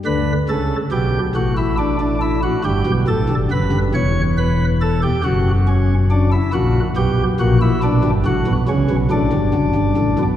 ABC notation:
X:1
M:12/8
L:1/16
Q:3/8=46
K:Bphr
V:1 name="Pipe organ"
B2 A2 G2 F E D D E F G2 A2 B2 ^c2 B2 A G | F2 ^C2 D E F2 G2 F E D2 F2 C2 D6 |]
V:2 name="Pipe organ" clef=bass
[D,,D,]2 [^C,,^C,]2 [B,,,B,,]2 [A,,,A,,]6 [G,,,G,,] [B,,,B,,] [A,,,A,,] [G,,,G,,] [F,,,F,,] [G,,,G,,] [E,,,E,,]6 | [F,,,F,,]6 [^A,,,^A,,]2 [B,,,B,,]2 [A,,,A,,]2 [B,,,B,,] [G,,,G,,] [=A,,,=A,,] [B,,,B,,] [^C,,^C,] [B,,,B,,] [A,,,A,,] [G,,,G,,] [F,,,F,,] [G,,,G,,] [A,,,A,,] [B,,,B,,] |]